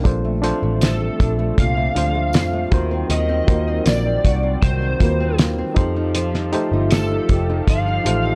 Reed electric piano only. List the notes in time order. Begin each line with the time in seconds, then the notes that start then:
0.04 D4 F4 A4 C5
0.42 D4 F4 A4 C5
1.95 D4 F4 A4 C5
2.71 F4 F#4 A#4 C5
3.46 F4 F#4 A#4 C5
5.00 F4 F#4 A#4 B4
5.09 C5
5.75 D#4 G4 A4 C5
6.52 D#4 G4 A4 C5
8.04 D#4 G4 A4 C5